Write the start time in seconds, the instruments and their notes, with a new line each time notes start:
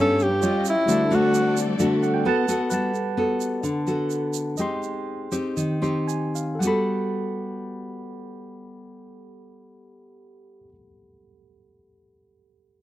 Already playing: nylon-string guitar G2 G3 B3 C#4, string section G2 B3 G4 A4 C#5, tine electric piano G4 B4 C#5 A5
0.01 tenor saxophone A4
0.19 tenor saxophone G4, shaker
0.41 nylon-string guitar G3 C#4 F4, string section C#4 F4 D#5, tine electric piano F4 C#5 D#5 G5, shaker
0.65 tenor saxophone E4, shaker
0.86 nylon-string guitar D3 A3 D4 F#4, tine electric piano G3 F#4 C5, string section G3 C4 F#4 A4 D5, shaker
0.90 tine electric piano D5 A5
1.11 nylon-string guitar A3 D4 F#4, tenor saxophone F#4, shaker
1.34 shaker
1.57 shaker
1.79 nylon-string guitar D3 A3 D4 F#4, shaker
2.03 tine electric piano F#5, shaker
2.14 tine electric piano G5
2.25 nylon-string guitar B3 F#4 A4, string section B3 F#5, tine electric piano B4 F#5 A5
2.48 nylon-string guitar B3 F#4 A4, shaker
2.70 nylon-string guitar G3, tine electric piano B4 F#5, shaker
2.74 tine electric piano A5
2.94 shaker
3.17 nylon-string guitar B3 F#4 A4
3.41 shaker
3.63 nylon-string guitar D3, shaker
3.87 nylon-string guitar B3 F#4 A4, shaker
4.10 shaker
4.34 shaker
4.58 nylon-string guitar G#3 C4 D#4 G4, tine electric piano D#5 G5 C6, shaker
4.83 shaker
5.32 nylon-string guitar C4 D#4 G4, shaker
5.57 nylon-string guitar D#3, shaker
5.82 nylon-string guitar C4 D#4 G4, tine electric piano C6, shaker
6.08 tine electric piano G#5, shaker
6.35 tine electric piano F5, shaker
6.55 tine electric piano A4
6.59 nylon-string guitar G3 B3, tine electric piano G4 F#5, shaker
6.65 nylon-string guitar F#4 A4, tine electric piano B5